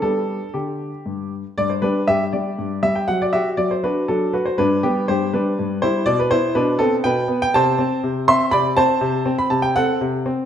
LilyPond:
<<
  \new Staff \with { instrumentName = "Grand piano" } { \time 3/4 \key g \major \tempo 4 = 121 a'4 g'4. r8 | d''16 c''16 <d' b'>8 <g' e''>8 <g' d''>4 e''16 g''16 | fis''16 d''16 <g' e''>8 d''16 c''16 <d' b'>8 <d' a'>8 b'16 c''16 | <d' b'>8 <b g'>8 <g' c''>8 <d' b'>4 <e' c''>8 |
d''16 b'16 <e' c''>8 <d' b'>8 <c' a'>8 <b' g''>8. g''16 | <c'' a''>4. <e'' c'''>8 <d'' b''>8 <c'' a''>8~ | <c'' a''>8. b''16 a''16 g''16 <a' fis''>8 r4 | }
  \new Staff \with { instrumentName = "Grand piano" } { \clef bass \time 3/4 \key g \major <g b d'>4 d4 g,4 | g,8 g8 g,8 g8 g,8 g8 | fis8 fis'8 fis8 fis'8 fis8 fis'8 | g,8 g8 g,8 g8 g,8 g8 |
b,8 b8 b,8 b8 b,8 b8 | c8 c'8 c8 c'8 c8 c'8 | c8 c'8 c8 c'8 c8 c'8 | }
>>